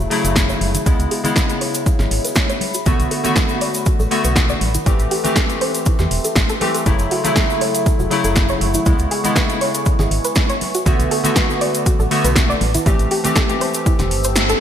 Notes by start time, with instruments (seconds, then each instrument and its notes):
Already playing: ambient pad F#4 C#5 E5 A5
0.10 synth keys C#3 F#3 A3 E4, open hi-hat
0.25 fm bass F#1, synth arpeggio sound A4, closed hi-hat, shaker
0.36 kick, snare, closed hi-hat, shaker
0.49 synth arpeggio sound C#5, shaker
0.61 fm bass F#1, open hi-hat, high conga
0.74 synth arpeggio sound E4, closed hi-hat, low conga, shaker
0.86 fm bass C#2, synth keys C#3 G#3 B3 E4, synth arpeggio sound E4, ambient pad G#4 C#5 E5 B5, kick, closed hi-hat, shaker
1.00 fm bass C#2, closed hi-hat, shaker
1.11 synth arpeggio sound G#4, open hi-hat
1.24 synth keys C#3 G#3 B3 E4, closed hi-hat, low conga, shaker
1.36 synth arpeggio sound B4, kick, snare, closed hi-hat, high conga, shaker
1.50 closed hi-hat, shaker
1.61 synth arpeggio sound C#5, open hi-hat
1.75 closed hi-hat, shaker
1.86 synth arpeggio sound E4, kick, closed hi-hat, shaker
1.99 fm bass G#1, synth arpeggio sound G#4, snare, high conga, low conga, shaker
2.11 fm bass G#1, open hi-hat
2.25 synth arpeggio sound B4, closed hi-hat, shaker
2.35 kick, snare, closed hi-hat, shaker
2.49 synth arpeggio sound C#5, closed hi-hat, shaker
2.61 ambient pad A4 D5 F#5, open hi-hat, high conga
2.74 synth arpeggio sound F#4, closed hi-hat, shaker
2.86 fm bass B1, synth keys D3 A3 B3 F#4, synth arpeggio sound F#4, kick, closed hi-hat, shaker
3.00 fm bass B1, closed hi-hat, shaker
3.11 synth arpeggio sound A4, open hi-hat
3.24 synth keys D3 A3 B3 F#4, closed hi-hat, low conga, shaker
3.36 synth arpeggio sound B4, kick, snare, closed hi-hat, high conga, shaker
3.49 shaker
3.61 synth arpeggio sound D5, open hi-hat
3.74 closed hi-hat, shaker
3.86 synth arpeggio sound F#4, kick, closed hi-hat, shaker
3.99 fm bass A1, synth arpeggio sound A4, high conga, shaker
4.11 synth keys D3 A3 B3 F#4, open hi-hat
4.24 fm bass B1, synth arpeggio sound B4, closed hi-hat, shaker
4.36 kick, snare, closed hi-hat, shaker
4.49 synth arpeggio sound D5, shaker
4.61 fm bass A1, ambient pad E5 G5 C6, open hi-hat, high conga
4.75 synth arpeggio sound E4, closed hi-hat, low conga, shaker
4.86 fm bass A1, synth keys E3 A3 C4 G4, synth arpeggio sound E4, kick, closed hi-hat, shaker
4.99 fm bass A1, closed hi-hat, shaker
5.11 synth arpeggio sound G4, open hi-hat
5.24 synth keys E3 A3 C4 G4, closed hi-hat, low conga, shaker
5.36 synth arpeggio sound A4, kick, snare, closed hi-hat, high conga, shaker
5.50 closed hi-hat, shaker
5.61 synth arpeggio sound C5, open hi-hat
5.75 closed hi-hat, shaker
5.86 synth arpeggio sound E4, kick, closed hi-hat, shaker
5.99 fm bass E2, synth arpeggio sound G4, snare, high conga, low conga, shaker
6.11 fm bass E1, open hi-hat
6.25 synth arpeggio sound A4, closed hi-hat, shaker
6.36 fm bass A1, kick, snare, closed hi-hat, shaker
6.49 synth arpeggio sound A4, closed hi-hat, shaker
6.61 synth keys E3 A3 C4 G4, synth arpeggio sound A4, open hi-hat, high conga
6.75 synth arpeggio sound A4, closed hi-hat, shaker
6.86 fm bass F#1, synth keys C#3 F#3 A3 E4, synth arpeggio sound E4, ambient pad F#5 C#6, kick, closed hi-hat, shaker
6.99 fm bass F#1, closed hi-hat, shaker
7.11 synth arpeggio sound F#4, open hi-hat
7.24 synth keys C#3 F#3 A3 E4, closed hi-hat, low conga, shaker
7.36 synth arpeggio sound A4, kick, snare, closed hi-hat, high conga, shaker
7.50 shaker
7.61 synth arpeggio sound C#5, open hi-hat
7.75 closed hi-hat, shaker
7.86 synth arpeggio sound E4, kick, closed hi-hat, shaker
7.99 fm bass E1, synth arpeggio sound F#4, high conga, shaker
8.10 synth keys C#3 F#3 A3 E4, open hi-hat
8.24 fm bass F#1, synth arpeggio sound A4, closed hi-hat, shaker
8.36 kick, snare, closed hi-hat, shaker
8.49 synth arpeggio sound C#5, shaker
8.61 fm bass F#1, open hi-hat, high conga
8.74 synth arpeggio sound E4, closed hi-hat, low conga, shaker
8.86 fm bass C#2, synth keys C#3 G#3 B3 E4, synth arpeggio sound E4, ambient pad B4 G#5, kick, closed hi-hat, shaker
8.99 fm bass C#2, closed hi-hat, shaker
9.11 synth arpeggio sound G#4, open hi-hat
9.24 synth keys C#3 G#3 B3 E4, closed hi-hat, low conga, shaker
9.36 synth arpeggio sound B4, kick, snare, closed hi-hat, high conga, shaker
9.50 closed hi-hat, shaker
9.61 synth arpeggio sound C#5, open hi-hat
9.75 closed hi-hat, shaker
9.85 synth arpeggio sound E4, kick, closed hi-hat, shaker
9.99 fm bass G#1, synth arpeggio sound G#4, snare, high conga, low conga, shaker
10.11 fm bass G#1, open hi-hat
10.25 synth arpeggio sound B4, closed hi-hat, shaker
10.35 kick, snare, closed hi-hat, shaker
10.50 synth arpeggio sound C#5, closed hi-hat, shaker
10.61 ambient pad F#5 A5 D6, open hi-hat, high conga
10.74 synth arpeggio sound F#4, closed hi-hat, shaker
10.86 fm bass B1, synth keys D3 A3 B3 F#4, synth arpeggio sound F#4, kick, closed hi-hat, shaker
10.99 fm bass B1, closed hi-hat, shaker
11.11 synth arpeggio sound A4, open hi-hat
11.24 synth keys D3 A3 B3 F#4, closed hi-hat, low conga, shaker
11.36 synth arpeggio sound B4, kick, snare, closed hi-hat, high conga, shaker
11.50 shaker
11.61 synth arpeggio sound D5, open hi-hat
11.74 closed hi-hat, shaker
11.86 synth arpeggio sound F#4, kick, closed hi-hat, shaker
12.00 fm bass A1, synth arpeggio sound A4, high conga, shaker
12.11 synth keys D3 A3 B3 F#4, open hi-hat
12.25 fm bass B1, synth arpeggio sound B4, closed hi-hat, shaker
12.36 kick, snare, closed hi-hat, shaker
12.50 synth arpeggio sound D5, shaker
12.61 fm bass A1, ambient pad C5 G5 E6, open hi-hat, high conga
12.74 synth arpeggio sound E4, closed hi-hat, low conga, shaker
12.86 fm bass A1, synth keys E3 A3 C4 G4, synth arpeggio sound E4, kick, closed hi-hat, shaker
12.99 fm bass A1, closed hi-hat, shaker
13.11 synth arpeggio sound G4, open hi-hat
13.24 synth keys E3 A3 C4 G4, closed hi-hat, low conga, shaker
13.36 synth arpeggio sound A4, kick, snare, closed hi-hat, high conga, shaker
13.50 closed hi-hat, shaker
13.61 synth arpeggio sound C5, open hi-hat
13.74 closed hi-hat, shaker
13.86 synth arpeggio sound E4, kick, closed hi-hat, shaker
13.99 fm bass E1, synth arpeggio sound G4, snare, closed hi-hat, high conga, low conga, shaker
14.11 fm bass G1, open hi-hat
14.24 synth arpeggio sound C5, closed hi-hat, shaker
14.36 snare, closed hi-hat, shaker
14.49 synth arpeggio sound A4, closed hi-hat, shaker